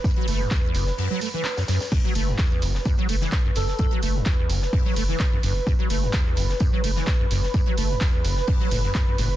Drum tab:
CC |----------------|x---------------|----------------|----------------|
HH |-xo---o-o-o---o-|--o---o---o---o-|-xo---o-o-o---o-|--o---o---o---o-|
TB |x-x-x-x---x-xxxx|x-x-x-x-x-x-x-x-|x-x-x-x---x-x-x-|x-x-x-x-x-x-x-x-|
CP |----x-------x---|----x-------x---|----x-------x---|----x-------x---|
SD |----o--o----oooo|----o--o---oo--o|----o--o----o---|----o--o---oo--o|
BD |o---o-----------|o---o---o---o---|o---o---o---o---|o---o---o---o---|

CC |----------------|
HH |-xo---o-o-o---o-|
TB |x-x-x-x---x-x-x-|
CP |----x-------x---|
SD |----o--o----o---|
BD |o---o---o---o---|